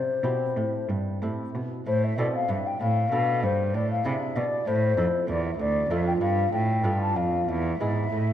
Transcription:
0.00 0.20 C3 soft
0.00 0.21 C3 medium
0.00 0.88 C5 medium
0.23 0.53 B2 soft
0.23 0.54 B2 soft
0.23 1.18 C4 soft
0.23 1.18 E4 soft
0.23 1.19 G4 soft
0.56 0.87 A2 soft
0.56 0.86 A2 soft
0.89 1.20 G2 medium
0.89 1.19 G2 soft
1.22 1.52 A2 soft
1.22 1.83 C4 soft
1.22 1.83 E4 soft
1.22 1.83 G4 soft
1.55 1.84 B2 soft
1.86 2.15 A2 soft
1.86 2.16 A2 medium
1.86 2.05 C5 medium
2.04 2.17 E5 medium
2.18 2.46 B2 medium
2.18 2.26 B2 medium
2.18 2.76 C4 soft
2.18 2.77 E4 soft
2.18 2.77 A4 soft
2.18 2.33 D5 medium
2.34 2.51 F5 medium
2.49 2.57 G2 soft
2.49 2.77 G2 soft
2.49 2.68 E5 medium
2.66 2.81 G5 medium
2.80 3.11 A2 medium
2.80 3.09 A2 soft
2.80 3.42 F5 medium
3.11 3.45 B2 medium
3.11 3.40 B2 soft
3.11 3.70 D4 soft
3.11 3.70 A4 soft
3.43 3.71 G2 soft
3.43 3.76 G2 medium
3.43 3.75 C5 medium
3.74 4.05 A2 medium
3.74 4.02 A2 soft
3.74 3.89 D5 medium
3.90 4.07 F5 medium
4.05 4.33 C3 medium
4.05 4.13 C3 medium
4.05 4.63 D4 soft
4.05 4.63 E4 soft
4.05 4.63 G#4 soft
4.05 4.37 E5 medium
4.36 4.44 B2 medium
4.36 4.64 B2 soft
4.36 4.68 D5 medium
4.66 4.96 A2 medium
4.66 4.94 A2 medium
4.66 5.28 C5 medium
4.97 5.05 F2 medium
4.97 5.25 F2 soft
4.97 5.55 E4 soft
4.97 5.55 A4 soft
5.28 5.58 E2 medium
5.28 5.56 E2 soft
5.28 5.43 D5 medium
5.45 5.51 E5 medium
5.59 5.89 D2 medium
5.59 5.87 D2 soft
5.59 5.92 D5 medium
5.90 6.20 F2 medium
5.90 6.18 F2 soft
5.90 6.80 D4 soft
5.90 6.80 F4 soft
5.90 6.80 A4 soft
5.90 6.05 E5 medium
6.07 6.13 G5 medium
6.20 6.51 G2 medium
6.20 6.49 G2 soft
6.20 6.52 F5 medium
6.52 6.85 A2 medium
6.52 6.81 A2 soft
6.52 6.99 G5 medium
6.84 7.12 G2 soft
6.84 7.17 G2 medium
6.84 7.44 D4 soft
6.84 7.44 F4 soft
6.84 7.44 A4 soft
7.01 7.17 A5 medium
7.15 7.47 F2 soft
7.15 7.45 F2 soft
7.15 7.50 F5 medium
7.48 7.79 E2 medium
7.48 7.77 E2 soft
7.48 8.33 E5 medium
7.80 8.09 G#2 soft
7.80 8.12 G#2 medium
7.80 8.09 B3 soft
7.80 8.33 E4 soft
7.80 8.33 G#4 soft
8.12 8.33 A2 soft

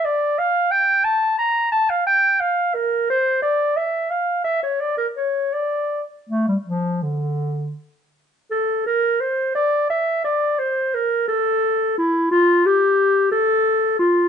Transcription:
0.05 0.40 D5 medium
0.38 0.73 F5 medium
0.71 1.06 G5 medium
1.04 1.38 A5 medium
1.38 1.71 A#5 medium
1.72 1.91 A5 medium
1.90 2.06 F5 medium
2.07 2.42 G5 medium
2.40 2.76 F5 medium
2.74 3.09 A#4 medium
3.10 3.42 C5 medium
3.42 3.78 D5 medium
3.77 4.12 E5 medium
4.10 4.44 F5 medium
4.44 4.62 E5 medium
4.63 4.82 C#5 medium
4.81 4.97 D5 medium
4.98 5.06 A#4 medium
5.16 5.55 C#5 medium
5.53 6.03 D5 medium
6.29 6.46 A3 medium
6.48 6.56 G3 soft
6.66 7.04 F3 medium
7.03 7.76 D3 medium
8.51 8.84 A4 medium
8.86 9.22 A#4 medium
9.20 9.54 C5 medium
9.55 9.89 D5 medium
9.90 10.23 E5 medium
10.25 10.60 D5 medium
10.59 10.96 C5 medium
10.94 11.28 A#4 medium
11.28 11.96 A4 medium
11.98 12.31 E4 medium
12.31 12.67 F4 medium
12.66 13.31 G4 medium
13.32 13.98 A4 medium
13.99 14.29 F4 medium

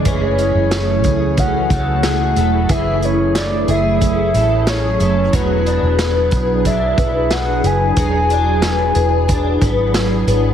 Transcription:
0.00 0.71 G#3 medium
0.00 0.38 C#4 medium
0.05 0.52 F#1 medium
0.05 2.69 E3 medium
0.05 10.54 F#3 medium
0.05 5.29 A3 medium
0.05 10.54 E4 medium
0.05 1.04 G#4 medium
0.05 2.67 G#4 medium
0.05 1.41 C#5 medium
0.05 kick medium
0.05 closed hi-hat medium
0.38 1.36 C#4 soft
0.38 closed hi-hat soft
0.55 1.04 F#1 medium
0.71 1.69 A3 soft
0.71 snare medium
0.71 closed hi-hat medium
1.04 1.67 C#2 medium
1.04 2.03 G#4 soft
1.04 kick medium
1.04 closed hi-hat soft
1.37 3.02 C#4 soft
1.37 2.72 F#5 medium
1.37 kick medium
1.37 closed hi-hat medium
1.70 2.33 C#2 medium
1.70 2.35 A3 medium
1.70 kick medium
1.70 closed hi-hat soft
2.03 2.69 G#4 medium
2.03 snare medium
2.03 closed hi-hat medium
2.36 2.68 E1 medium
2.36 3.34 A3 soft
2.36 closed hi-hat soft
2.69 3.64 F#1 medium
2.69 5.32 E3 medium
2.69 3.68 G#4 medium
2.69 5.31 G#4 medium
2.69 3.06 E5 loud
2.69 kick medium
2.69 closed hi-hat medium
3.02 3.37 C#5 medium
3.02 closed hi-hat soft
3.35 4.33 A3 medium
3.35 3.72 D5 medium
3.35 snare medium
3.35 closed hi-hat medium
3.68 4.31 F#1 medium
3.68 4.67 G#4 medium
3.68 4.68 E5 medium
3.68 closed hi-hat soft
4.01 5.39 C#4 soft
4.01 kick medium
4.01 closed hi-hat medium
4.34 4.97 A1 medium
4.34 4.99 A3 medium
4.34 closed hi-hat soft
4.67 5.33 G#4 medium
4.67 4.99 C#5 loud
4.67 snare medium
4.67 closed hi-hat medium
5.00 5.31 F#1 medium
5.00 5.40 A3 soft
5.00 5.36 C#5 medium
5.00 closed hi-hat soft
5.33 5.80 E1 medium
5.33 7.96 F#3 medium
5.33 10.54 D4 medium
5.33 10.54 G#4 medium
5.33 6.31 G#4 medium
5.33 6.68 B4 loud
5.33 kick medium
5.33 closed hi-hat medium
5.66 6.64 D4 medium
5.66 closed hi-hat soft
5.82 6.29 E1 medium
5.99 6.97 B3 soft
5.99 snare medium
5.99 closed hi-hat medium
6.31 6.95 B1 medium
6.31 7.30 G#4 medium
6.31 kick medium
6.31 closed hi-hat soft
6.65 8.29 D4 medium
6.65 7.34 E5 medium
6.65 kick medium
6.65 closed hi-hat medium
6.98 7.60 B1 medium
6.98 7.64 B3 medium
6.98 kick medium
6.98 closed hi-hat soft
7.31 7.96 G#4 medium
7.31 7.68 F#5 loud
7.31 snare medium
7.31 closed hi-hat medium
7.64 7.95 F#1 medium
7.64 8.63 B3 soft
7.64 9.96 G#5 loud
7.64 closed hi-hat soft
7.96 8.92 E1 medium
7.96 10.54 F#3 medium
7.96 8.94 G#4 medium
7.96 kick medium
7.96 closed hi-hat medium
8.30 9.27 D4 medium
8.30 closed hi-hat soft
8.62 9.61 B3 soft
8.62 snare medium
8.62 closed hi-hat medium
8.95 9.58 E1 medium
8.95 9.93 G#4 medium
8.95 closed hi-hat soft
9.28 10.54 D4 soft
9.28 kick medium
9.28 closed hi-hat medium
9.61 10.24 G#1 medium
9.61 10.27 B3 medium
9.61 kick medium
9.61 closed hi-hat soft
9.94 10.54 G#4 medium
9.94 snare medium
9.94 closed hi-hat medium
10.27 10.54 G#1 medium
10.27 10.54 B3 soft
10.27 closed hi-hat soft

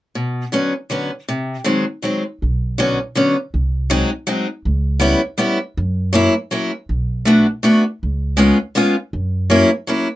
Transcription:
0.15 0.44 B2 soft
0.52 0.72 D3 soft
0.52 0.72 F#3 soft
0.52 0.73 B3 soft
0.52 0.73 C#4 medium
0.90 1.09 D3 soft
0.90 1.10 F#3 soft
0.90 1.10 B3 soft
0.90 1.10 C#4 soft
1.28 1.56 C3 medium
1.64 1.84 D#3 medium
1.64 1.84 F#3 medium
1.64 1.84 G#3 soft
1.64 1.84 C4 medium
2.02 2.22 D#3 soft
2.02 2.22 F#3 soft
2.02 2.23 G#3 soft
2.02 2.23 C4 soft
2.42 2.91 B1 medium
2.78 2.98 D3 medium
2.78 2.98 F#3 medium
2.78 2.98 B3 medium
2.78 2.98 C#4 medium
3.15 3.35 D3 soft
3.15 3.35 F#3 soft
3.15 3.35 B3 soft
3.15 3.36 C#4 medium
3.54 4.02 C2 medium
3.90 4.09 F#3 medium
3.90 4.10 G#3 medium
3.90 4.10 C4 medium
3.90 4.10 D#4 medium
4.27 4.46 F#3 medium
4.27 4.46 G#3 medium
4.27 4.46 C4 soft
4.27 4.47 D#4 medium
4.65 5.13 C#2 medium
5.00 5.19 G3 medium
5.00 5.20 B3 medium
5.00 5.20 C#4 medium
5.00 5.20 E4 medium
5.38 5.57 G3 medium
5.38 5.57 B3 soft
5.38 5.58 C#4 medium
5.38 5.58 E4 medium
5.77 6.26 F#2 medium
6.13 6.32 F#3 medium
6.13 6.33 A#3 medium
6.13 6.33 C#4 medium
6.13 6.33 E4 medium
6.51 6.70 F#3 soft
6.51 6.70 A#3 soft
6.51 6.71 C#4 medium
6.51 6.71 E4 soft
6.89 7.38 B1 medium
7.25 7.45 A3 medium
7.25 7.45 B3 soft
7.25 7.46 D4 medium
7.25 7.46 F#4 medium
7.63 7.83 A3 medium
7.63 7.83 B3 soft
7.63 7.83 D4 medium
7.63 7.83 F#4 medium
8.03 8.51 C#2 medium
8.37 8.56 G#3 medium
8.37 8.57 B3 medium
8.37 8.57 C#4 medium
8.37 8.57 F4 medium
8.75 8.94 G#3 medium
8.75 8.94 B3 medium
8.75 8.95 C#4 medium
8.75 8.95 F4 medium
9.13 9.62 F#2 medium
9.50 9.69 F#3 medium
9.50 9.69 A#3 medium
9.50 9.69 C#4 medium
9.50 9.70 E4 medium
9.87 10.06 F#3 soft
9.87 10.07 A#3 soft
9.87 10.07 C#4 medium
9.87 10.07 E4 medium

